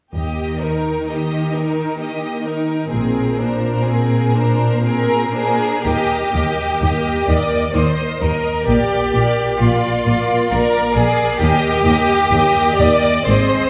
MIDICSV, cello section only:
0, 0, Header, 1, 2, 480
1, 0, Start_track
1, 0, Key_signature, -3, "major"
1, 0, Tempo, 964630
1, 72, Time_signature, 3, 2, 24, 8
1, 551, Tempo, 924499
1, 1991, Tempo, 981997
1, 3431, Tempo, 930233
1, 4871, Tempo, 900901
1, 6311, Tempo, 972447
1, 6991, End_track
2, 0, Start_track
2, 0, Title_t, "Cello section"
2, 0, Program_c, 0, 48
2, 73, Note_on_c, 0, 51, 37
2, 1478, Note_off_c, 0, 51, 0
2, 1498, Note_on_c, 0, 46, 43
2, 2841, Note_off_c, 0, 46, 0
2, 2956, Note_on_c, 0, 51, 40
2, 2995, Note_off_c, 0, 51, 0
2, 3190, Note_on_c, 0, 51, 38
2, 3229, Note_off_c, 0, 51, 0
2, 3423, Note_on_c, 0, 51, 42
2, 3464, Note_off_c, 0, 51, 0
2, 3664, Note_on_c, 0, 51, 42
2, 3705, Note_off_c, 0, 51, 0
2, 3902, Note_on_c, 0, 51, 43
2, 3944, Note_off_c, 0, 51, 0
2, 4144, Note_on_c, 0, 51, 43
2, 4185, Note_off_c, 0, 51, 0
2, 4388, Note_on_c, 0, 46, 44
2, 4429, Note_off_c, 0, 46, 0
2, 4624, Note_on_c, 0, 46, 42
2, 4665, Note_off_c, 0, 46, 0
2, 4864, Note_on_c, 0, 46, 48
2, 4906, Note_off_c, 0, 46, 0
2, 5110, Note_on_c, 0, 46, 50
2, 5152, Note_off_c, 0, 46, 0
2, 5349, Note_on_c, 0, 46, 53
2, 5391, Note_off_c, 0, 46, 0
2, 5583, Note_on_c, 0, 46, 53
2, 5625, Note_off_c, 0, 46, 0
2, 5821, Note_on_c, 0, 39, 55
2, 5864, Note_off_c, 0, 39, 0
2, 6061, Note_on_c, 0, 39, 52
2, 6103, Note_off_c, 0, 39, 0
2, 6308, Note_on_c, 0, 39, 55
2, 6348, Note_off_c, 0, 39, 0
2, 6542, Note_on_c, 0, 39, 54
2, 6581, Note_off_c, 0, 39, 0
2, 6781, Note_on_c, 0, 44, 46
2, 6821, Note_off_c, 0, 44, 0
2, 6991, End_track
0, 0, End_of_file